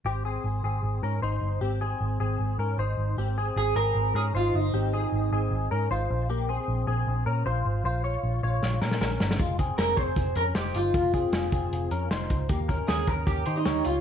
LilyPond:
<<
  \new Staff \with { instrumentName = "Clean electric guitar" } { \time 4/4 \key aes \major \tempo 4 = 154 r1 | r1 | r4 aes'8 bes'4 aes'8 f'8 ees'8~ | ees'2~ ees'8 r4. |
r1 | r1 | r4 bes'8 c''4 bes'8 g'8 f'8~ | f'2~ f'8 r4. |
r4 aes'8 bes'8 g'8. ees'8. f'8 | }
  \new Staff \with { instrumentName = "Clean electric guitar" } { \time 4/4 \key aes \major <c' g'>8 <c' aes'>4 <c' aes'>4 <des' bes'>8 <ees' c''>4 | <c' g'>8 <c' aes'>4 <c' aes'>4 <des' bes'>8 <ees' c''>4 | <c' g'>8 <c' aes'>4 <c' aes'>4 <des' bes'>8 <ees' c''>4 | <c' g'>8 <c' aes'>4 <c' aes'>4 <des' bes'>8 <f' c''>4 |
<bes g'>8 <c' aes'>4 <c' aes'>4 <des' bes'>8 <f' c''>4 | <f' c''>8 <f' des''>4 <f' des''>4 <des' bes'>8 <des' bes'>4 | <aes f'>8 <c' aes'>4 <c' aes'>4 <des' bes'>8 <ees' c''>4 | <aes f'>8 <c' aes'>4 <c' aes'>4 <des' bes'>8 <ees' c''>4 |
<bes g'>8 <des' bes'>4 <des' bes'>4 <ees' c''>8 <g' des''>4 | }
  \new Staff \with { instrumentName = "Picked electric bass" } { \clef bass \time 4/4 \key aes \major aes,,4 aes,,8 aes,,8 aes,,8 aes,8 aes,,8 g,,8 | aes,,4 aes,,8 aes,,8 aes,,8 aes,8 aes,,8 aes,,8 | aes,,4 aes,,8 aes,,8 aes,,8 aes,8 aes,,8 g,,8 | aes,,4 aes,,8 aes,,8 aes,,8 aes,8 aes,,8 bes,,8~ |
bes,,4 bes,,8 bes,,8 bes,,8 bes,8 bes,,8 aes,,8 | bes,,4 bes,,8 bes,,8 bes,,8 bes,8 bes,,8 g,,8 | f,,4 f,,8 f,,8 f,,8 f,8 f,,8 g,,8 | f,,4 f,,8 f,,8 f,,8 f,8 f,,8 des,8 |
ees,4 ees,8 ees,8 ees,8 ees8 ees,8 des,8 | }
  \new DrumStaff \with { instrumentName = "Drums" } \drummode { \time 4/4 r4 r4 r4 r4 | r4 r4 r4 r4 | r4 r4 r4 r4 | r4 r4 r4 r4 |
r4 r4 r4 r4 | r4 r4 sn8 sn16 sn16 sn8 sn16 sn16 | <hh bd>8 <hh bd>8 <hh sn>8 <hh bd>8 <hh bd>8 hh8 <hh sn>8 hh8 | <hh bd>8 <hh bd>8 <hh sn>8 <hh bd>8 hh8 hh8 <hh sn>8 <hh bd>8 |
<hh bd>8 <hh bd>8 <hh sn>8 <hh bd>8 <hh bd>8 hh8 <hh sn>8 hh8 | }
>>